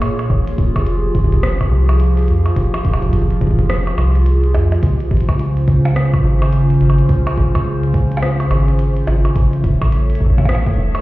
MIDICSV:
0, 0, Header, 1, 5, 480
1, 0, Start_track
1, 0, Tempo, 566038
1, 254, Time_signature, 4, 2, 24, 8
1, 9339, End_track
2, 0, Start_track
2, 0, Title_t, "Ambient pad"
2, 0, Program_c, 0, 92
2, 0, Note_on_c, 0, 58, 84
2, 0, Note_on_c, 0, 65, 74
2, 0, Note_on_c, 0, 68, 77
2, 0, Note_on_c, 0, 73, 93
2, 220, Note_off_c, 0, 58, 0
2, 220, Note_off_c, 0, 73, 0
2, 255, Note_on_c, 0, 53, 83
2, 255, Note_on_c, 0, 67, 76
2, 4060, Note_off_c, 0, 68, 0
2, 4061, Note_off_c, 0, 53, 0
2, 4061, Note_off_c, 0, 67, 0
2, 4094, Note_on_c, 0, 49, 82
2, 4094, Note_on_c, 0, 61, 76
2, 4094, Note_on_c, 0, 72, 90
2, 7900, Note_off_c, 0, 49, 0
2, 7900, Note_off_c, 0, 61, 0
2, 7900, Note_off_c, 0, 65, 0
2, 7900, Note_off_c, 0, 72, 0
2, 7935, Note_on_c, 0, 57, 82
2, 7935, Note_on_c, 0, 69, 76
2, 7935, Note_on_c, 0, 73, 75
2, 7935, Note_on_c, 0, 76, 91
2, 9339, Note_off_c, 0, 57, 0
2, 9339, Note_off_c, 0, 69, 0
2, 9339, Note_off_c, 0, 73, 0
2, 9339, Note_off_c, 0, 76, 0
2, 9339, End_track
3, 0, Start_track
3, 0, Title_t, "FM bass"
3, 0, Program_c, 1, 39
3, 14, Note_on_c, 1, 46, 79
3, 204, Note_off_c, 1, 46, 0
3, 254, Note_on_c, 1, 29, 96
3, 363, Note_off_c, 1, 29, 0
3, 494, Note_on_c, 1, 27, 84
3, 603, Note_off_c, 1, 27, 0
3, 643, Note_on_c, 1, 29, 85
3, 934, Note_off_c, 1, 29, 0
3, 974, Note_on_c, 1, 29, 81
3, 1414, Note_off_c, 1, 29, 0
3, 1454, Note_on_c, 1, 36, 103
3, 1934, Note_on_c, 1, 41, 80
3, 1947, Note_off_c, 1, 36, 0
3, 2125, Note_off_c, 1, 41, 0
3, 2174, Note_on_c, 1, 29, 98
3, 2283, Note_off_c, 1, 29, 0
3, 2414, Note_on_c, 1, 27, 85
3, 2523, Note_off_c, 1, 27, 0
3, 2563, Note_on_c, 1, 29, 84
3, 2855, Note_off_c, 1, 29, 0
3, 2894, Note_on_c, 1, 29, 82
3, 3334, Note_off_c, 1, 29, 0
3, 3374, Note_on_c, 1, 36, 102
3, 3854, Note_on_c, 1, 41, 80
3, 3867, Note_off_c, 1, 36, 0
3, 4045, Note_off_c, 1, 41, 0
3, 4094, Note_on_c, 1, 37, 96
3, 4203, Note_off_c, 1, 37, 0
3, 4334, Note_on_c, 1, 32, 84
3, 4443, Note_off_c, 1, 32, 0
3, 4483, Note_on_c, 1, 37, 84
3, 4775, Note_off_c, 1, 37, 0
3, 4814, Note_on_c, 1, 37, 81
3, 5254, Note_off_c, 1, 37, 0
3, 5294, Note_on_c, 1, 32, 103
3, 5734, Note_off_c, 1, 32, 0
3, 5774, Note_on_c, 1, 32, 76
3, 5965, Note_off_c, 1, 32, 0
3, 6014, Note_on_c, 1, 37, 97
3, 6123, Note_off_c, 1, 37, 0
3, 6254, Note_on_c, 1, 32, 83
3, 6363, Note_off_c, 1, 32, 0
3, 6403, Note_on_c, 1, 37, 85
3, 6695, Note_off_c, 1, 37, 0
3, 6734, Note_on_c, 1, 37, 82
3, 7175, Note_off_c, 1, 37, 0
3, 7214, Note_on_c, 1, 32, 105
3, 7654, Note_off_c, 1, 32, 0
3, 7695, Note_on_c, 1, 32, 79
3, 7885, Note_off_c, 1, 32, 0
3, 7934, Note_on_c, 1, 33, 99
3, 8043, Note_off_c, 1, 33, 0
3, 8174, Note_on_c, 1, 28, 82
3, 8283, Note_off_c, 1, 28, 0
3, 8323, Note_on_c, 1, 33, 84
3, 8615, Note_off_c, 1, 33, 0
3, 8655, Note_on_c, 1, 33, 81
3, 9095, Note_off_c, 1, 33, 0
3, 9134, Note_on_c, 1, 28, 103
3, 9339, Note_off_c, 1, 28, 0
3, 9339, End_track
4, 0, Start_track
4, 0, Title_t, "Percussion blips"
4, 14, Note_on_c, 9, 60, 62
4, 99, Note_off_c, 9, 60, 0
4, 163, Note_on_c, 9, 60, 36
4, 247, Note_off_c, 9, 60, 0
4, 643, Note_on_c, 9, 60, 50
4, 728, Note_off_c, 9, 60, 0
4, 1363, Note_on_c, 9, 60, 36
4, 1448, Note_off_c, 9, 60, 0
4, 1603, Note_on_c, 9, 60, 52
4, 1688, Note_off_c, 9, 60, 0
4, 2083, Note_on_c, 9, 60, 35
4, 2168, Note_off_c, 9, 60, 0
4, 2324, Note_on_c, 9, 60, 58
4, 2408, Note_off_c, 9, 60, 0
4, 2489, Note_on_c, 9, 60, 50
4, 2574, Note_off_c, 9, 60, 0
4, 3283, Note_on_c, 9, 60, 35
4, 3368, Note_off_c, 9, 60, 0
4, 3374, Note_on_c, 9, 60, 50
4, 3459, Note_off_c, 9, 60, 0
4, 3854, Note_on_c, 9, 60, 59
4, 3939, Note_off_c, 9, 60, 0
4, 4003, Note_on_c, 9, 60, 36
4, 4088, Note_off_c, 9, 60, 0
4, 4483, Note_on_c, 9, 60, 49
4, 4568, Note_off_c, 9, 60, 0
4, 4963, Note_on_c, 9, 56, 93
4, 5048, Note_off_c, 9, 56, 0
4, 5203, Note_on_c, 9, 60, 35
4, 5288, Note_off_c, 9, 60, 0
4, 5444, Note_on_c, 9, 60, 50
4, 5528, Note_off_c, 9, 60, 0
4, 5848, Note_on_c, 9, 60, 34
4, 5933, Note_off_c, 9, 60, 0
4, 6163, Note_on_c, 9, 60, 60
4, 6248, Note_off_c, 9, 60, 0
4, 6403, Note_on_c, 9, 60, 51
4, 6488, Note_off_c, 9, 60, 0
4, 6929, Note_on_c, 9, 56, 95
4, 7014, Note_off_c, 9, 56, 0
4, 7123, Note_on_c, 9, 60, 36
4, 7208, Note_off_c, 9, 60, 0
4, 7214, Note_on_c, 9, 60, 52
4, 7299, Note_off_c, 9, 60, 0
4, 7694, Note_on_c, 9, 60, 60
4, 7779, Note_off_c, 9, 60, 0
4, 7844, Note_on_c, 9, 60, 36
4, 7928, Note_off_c, 9, 60, 0
4, 8324, Note_on_c, 9, 60, 55
4, 8409, Note_off_c, 9, 60, 0
4, 8804, Note_on_c, 9, 56, 43
4, 8865, Note_off_c, 9, 56, 0
4, 8865, Note_on_c, 9, 56, 58
4, 8945, Note_off_c, 9, 56, 0
4, 8945, Note_on_c, 9, 56, 74
4, 9029, Note_off_c, 9, 56, 0
4, 9283, Note_on_c, 9, 60, 54
4, 9339, Note_off_c, 9, 60, 0
4, 9339, End_track
5, 0, Start_track
5, 0, Title_t, "Drums"
5, 14, Note_on_c, 9, 42, 66
5, 99, Note_off_c, 9, 42, 0
5, 163, Note_on_c, 9, 42, 41
5, 247, Note_off_c, 9, 42, 0
5, 254, Note_on_c, 9, 36, 104
5, 339, Note_off_c, 9, 36, 0
5, 403, Note_on_c, 9, 42, 93
5, 488, Note_off_c, 9, 42, 0
5, 494, Note_on_c, 9, 36, 113
5, 494, Note_on_c, 9, 42, 67
5, 579, Note_off_c, 9, 36, 0
5, 579, Note_off_c, 9, 42, 0
5, 643, Note_on_c, 9, 36, 86
5, 643, Note_on_c, 9, 42, 40
5, 728, Note_off_c, 9, 36, 0
5, 728, Note_off_c, 9, 42, 0
5, 734, Note_on_c, 9, 42, 93
5, 819, Note_off_c, 9, 42, 0
5, 974, Note_on_c, 9, 36, 104
5, 974, Note_on_c, 9, 42, 66
5, 1054, Note_off_c, 9, 36, 0
5, 1054, Note_on_c, 9, 36, 85
5, 1059, Note_off_c, 9, 42, 0
5, 1123, Note_on_c, 9, 42, 39
5, 1134, Note_off_c, 9, 36, 0
5, 1134, Note_on_c, 9, 36, 70
5, 1208, Note_off_c, 9, 42, 0
5, 1214, Note_on_c, 9, 37, 123
5, 1214, Note_on_c, 9, 42, 93
5, 1219, Note_off_c, 9, 36, 0
5, 1299, Note_off_c, 9, 37, 0
5, 1299, Note_off_c, 9, 42, 0
5, 1363, Note_on_c, 9, 36, 119
5, 1363, Note_on_c, 9, 42, 39
5, 1448, Note_off_c, 9, 36, 0
5, 1448, Note_off_c, 9, 42, 0
5, 1603, Note_on_c, 9, 42, 40
5, 1688, Note_off_c, 9, 42, 0
5, 1694, Note_on_c, 9, 42, 93
5, 1779, Note_off_c, 9, 42, 0
5, 1843, Note_on_c, 9, 42, 39
5, 1854, Note_off_c, 9, 42, 0
5, 1854, Note_on_c, 9, 42, 26
5, 1858, Note_off_c, 9, 42, 0
5, 1858, Note_on_c, 9, 42, 33
5, 1889, Note_off_c, 9, 42, 0
5, 1889, Note_on_c, 9, 42, 22
5, 1904, Note_off_c, 9, 42, 0
5, 1904, Note_on_c, 9, 42, 17
5, 1919, Note_off_c, 9, 42, 0
5, 1919, Note_on_c, 9, 42, 14
5, 1934, Note_off_c, 9, 42, 0
5, 1934, Note_on_c, 9, 42, 64
5, 2019, Note_off_c, 9, 42, 0
5, 2083, Note_on_c, 9, 42, 40
5, 2168, Note_off_c, 9, 42, 0
5, 2174, Note_on_c, 9, 36, 106
5, 2175, Note_on_c, 9, 42, 90
5, 2259, Note_off_c, 9, 36, 0
5, 2259, Note_off_c, 9, 42, 0
5, 2324, Note_on_c, 9, 42, 37
5, 2408, Note_off_c, 9, 42, 0
5, 2414, Note_on_c, 9, 36, 108
5, 2415, Note_on_c, 9, 42, 68
5, 2499, Note_off_c, 9, 36, 0
5, 2499, Note_off_c, 9, 42, 0
5, 2563, Note_on_c, 9, 36, 37
5, 2563, Note_on_c, 9, 42, 38
5, 2609, Note_off_c, 9, 36, 0
5, 2609, Note_on_c, 9, 36, 47
5, 2648, Note_off_c, 9, 42, 0
5, 2654, Note_off_c, 9, 36, 0
5, 2654, Note_on_c, 9, 36, 59
5, 2654, Note_on_c, 9, 42, 91
5, 2728, Note_off_c, 9, 36, 0
5, 2728, Note_on_c, 9, 36, 68
5, 2739, Note_off_c, 9, 42, 0
5, 2803, Note_on_c, 9, 42, 38
5, 2813, Note_off_c, 9, 36, 0
5, 2888, Note_off_c, 9, 42, 0
5, 2894, Note_on_c, 9, 36, 103
5, 2894, Note_on_c, 9, 42, 64
5, 2944, Note_off_c, 9, 36, 0
5, 2944, Note_on_c, 9, 36, 84
5, 2974, Note_off_c, 9, 36, 0
5, 2974, Note_on_c, 9, 36, 70
5, 2979, Note_off_c, 9, 42, 0
5, 3043, Note_off_c, 9, 36, 0
5, 3043, Note_on_c, 9, 36, 59
5, 3043, Note_on_c, 9, 42, 38
5, 3054, Note_off_c, 9, 36, 0
5, 3054, Note_on_c, 9, 36, 48
5, 3104, Note_off_c, 9, 36, 0
5, 3104, Note_on_c, 9, 36, 38
5, 3128, Note_off_c, 9, 42, 0
5, 3134, Note_on_c, 9, 37, 119
5, 3134, Note_on_c, 9, 42, 88
5, 3188, Note_off_c, 9, 36, 0
5, 3219, Note_off_c, 9, 37, 0
5, 3219, Note_off_c, 9, 42, 0
5, 3283, Note_on_c, 9, 42, 38
5, 3368, Note_off_c, 9, 42, 0
5, 3523, Note_on_c, 9, 42, 38
5, 3608, Note_off_c, 9, 42, 0
5, 3614, Note_on_c, 9, 42, 90
5, 3699, Note_off_c, 9, 42, 0
5, 3763, Note_on_c, 9, 42, 39
5, 3848, Note_off_c, 9, 42, 0
5, 3854, Note_on_c, 9, 42, 64
5, 3939, Note_off_c, 9, 42, 0
5, 4003, Note_on_c, 9, 42, 38
5, 4088, Note_off_c, 9, 42, 0
5, 4094, Note_on_c, 9, 36, 103
5, 4094, Note_on_c, 9, 42, 84
5, 4179, Note_off_c, 9, 36, 0
5, 4179, Note_off_c, 9, 42, 0
5, 4243, Note_on_c, 9, 42, 36
5, 4328, Note_off_c, 9, 42, 0
5, 4334, Note_on_c, 9, 36, 106
5, 4334, Note_on_c, 9, 42, 29
5, 4384, Note_off_c, 9, 42, 0
5, 4384, Note_on_c, 9, 42, 39
5, 4414, Note_off_c, 9, 42, 0
5, 4414, Note_on_c, 9, 42, 50
5, 4419, Note_off_c, 9, 36, 0
5, 4483, Note_off_c, 9, 42, 0
5, 4483, Note_on_c, 9, 36, 80
5, 4483, Note_on_c, 9, 42, 37
5, 4568, Note_off_c, 9, 36, 0
5, 4568, Note_off_c, 9, 42, 0
5, 4575, Note_on_c, 9, 42, 89
5, 4659, Note_off_c, 9, 42, 0
5, 4723, Note_on_c, 9, 42, 38
5, 4808, Note_off_c, 9, 42, 0
5, 4814, Note_on_c, 9, 36, 104
5, 4815, Note_on_c, 9, 42, 60
5, 4899, Note_off_c, 9, 36, 0
5, 4899, Note_off_c, 9, 42, 0
5, 4963, Note_on_c, 9, 42, 37
5, 5048, Note_off_c, 9, 42, 0
5, 5055, Note_on_c, 9, 37, 114
5, 5055, Note_on_c, 9, 42, 89
5, 5139, Note_off_c, 9, 37, 0
5, 5139, Note_off_c, 9, 42, 0
5, 5203, Note_on_c, 9, 36, 113
5, 5203, Note_on_c, 9, 42, 38
5, 5288, Note_off_c, 9, 36, 0
5, 5288, Note_off_c, 9, 42, 0
5, 5444, Note_on_c, 9, 42, 37
5, 5528, Note_off_c, 9, 42, 0
5, 5534, Note_on_c, 9, 42, 89
5, 5619, Note_off_c, 9, 42, 0
5, 5683, Note_on_c, 9, 42, 37
5, 5768, Note_off_c, 9, 42, 0
5, 5774, Note_on_c, 9, 42, 60
5, 5859, Note_off_c, 9, 42, 0
5, 5923, Note_on_c, 9, 42, 38
5, 6008, Note_off_c, 9, 42, 0
5, 6014, Note_on_c, 9, 36, 98
5, 6014, Note_on_c, 9, 42, 85
5, 6099, Note_off_c, 9, 36, 0
5, 6099, Note_off_c, 9, 42, 0
5, 6163, Note_on_c, 9, 42, 37
5, 6248, Note_off_c, 9, 42, 0
5, 6254, Note_on_c, 9, 36, 101
5, 6255, Note_on_c, 9, 42, 64
5, 6339, Note_off_c, 9, 36, 0
5, 6339, Note_off_c, 9, 42, 0
5, 6403, Note_on_c, 9, 36, 78
5, 6403, Note_on_c, 9, 42, 38
5, 6488, Note_off_c, 9, 36, 0
5, 6488, Note_off_c, 9, 42, 0
5, 6643, Note_on_c, 9, 42, 37
5, 6728, Note_off_c, 9, 42, 0
5, 6734, Note_on_c, 9, 36, 103
5, 6735, Note_on_c, 9, 42, 62
5, 6819, Note_off_c, 9, 36, 0
5, 6819, Note_off_c, 9, 42, 0
5, 6883, Note_on_c, 9, 42, 37
5, 6968, Note_off_c, 9, 42, 0
5, 6975, Note_on_c, 9, 37, 114
5, 6975, Note_on_c, 9, 42, 86
5, 7059, Note_off_c, 9, 37, 0
5, 7059, Note_off_c, 9, 42, 0
5, 7123, Note_on_c, 9, 42, 38
5, 7208, Note_off_c, 9, 42, 0
5, 7363, Note_on_c, 9, 42, 38
5, 7448, Note_off_c, 9, 42, 0
5, 7454, Note_on_c, 9, 42, 87
5, 7539, Note_off_c, 9, 42, 0
5, 7603, Note_on_c, 9, 42, 38
5, 7688, Note_off_c, 9, 42, 0
5, 7694, Note_on_c, 9, 42, 62
5, 7779, Note_off_c, 9, 42, 0
5, 7844, Note_on_c, 9, 42, 38
5, 7928, Note_off_c, 9, 42, 0
5, 7934, Note_on_c, 9, 36, 97
5, 7935, Note_on_c, 9, 42, 88
5, 8019, Note_off_c, 9, 36, 0
5, 8020, Note_off_c, 9, 42, 0
5, 8084, Note_on_c, 9, 42, 38
5, 8169, Note_off_c, 9, 42, 0
5, 8174, Note_on_c, 9, 36, 102
5, 8175, Note_on_c, 9, 42, 66
5, 8259, Note_off_c, 9, 36, 0
5, 8260, Note_off_c, 9, 42, 0
5, 8323, Note_on_c, 9, 36, 78
5, 8324, Note_on_c, 9, 42, 38
5, 8408, Note_off_c, 9, 36, 0
5, 8409, Note_off_c, 9, 42, 0
5, 8415, Note_on_c, 9, 42, 91
5, 8500, Note_off_c, 9, 42, 0
5, 8564, Note_on_c, 9, 42, 39
5, 8609, Note_off_c, 9, 42, 0
5, 8609, Note_on_c, 9, 42, 65
5, 8654, Note_on_c, 9, 36, 45
5, 8694, Note_off_c, 9, 42, 0
5, 8704, Note_off_c, 9, 36, 0
5, 8704, Note_on_c, 9, 36, 54
5, 8734, Note_off_c, 9, 36, 0
5, 8734, Note_on_c, 9, 36, 62
5, 8803, Note_off_c, 9, 36, 0
5, 8803, Note_on_c, 9, 36, 69
5, 8804, Note_on_c, 9, 42, 38
5, 8814, Note_off_c, 9, 36, 0
5, 8814, Note_on_c, 9, 36, 81
5, 8864, Note_off_c, 9, 36, 0
5, 8864, Note_on_c, 9, 36, 87
5, 8889, Note_off_c, 9, 42, 0
5, 8895, Note_on_c, 9, 37, 111
5, 8895, Note_on_c, 9, 42, 91
5, 8949, Note_off_c, 9, 36, 0
5, 8980, Note_off_c, 9, 37, 0
5, 8980, Note_off_c, 9, 42, 0
5, 9043, Note_on_c, 9, 36, 108
5, 9044, Note_on_c, 9, 42, 38
5, 9055, Note_off_c, 9, 42, 0
5, 9055, Note_on_c, 9, 42, 30
5, 9104, Note_off_c, 9, 42, 0
5, 9104, Note_on_c, 9, 42, 25
5, 9128, Note_off_c, 9, 36, 0
5, 9189, Note_off_c, 9, 42, 0
5, 9283, Note_on_c, 9, 42, 38
5, 9339, Note_off_c, 9, 42, 0
5, 9339, End_track
0, 0, End_of_file